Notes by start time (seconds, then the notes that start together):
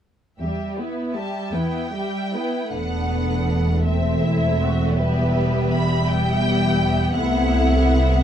0.39 E2 G3 G4 E5
0.76 B3 E4 B4
1.14 G3 G4 E5 A5
1.52 E2 B3 E4 B4 G5
1.92 G3 G4 E5
2.34 B3 E4 B4
2.73 E1 E2 A3 B3 D4 B4 F#5
3.86 C4 E5
4.24 E4
4.62 F#4
4.97 G3 B3 G4 B4 E5
5.72 B5
6.07 B3 G4 G5
7.15 C2 C3 A3 E4 E5 F#5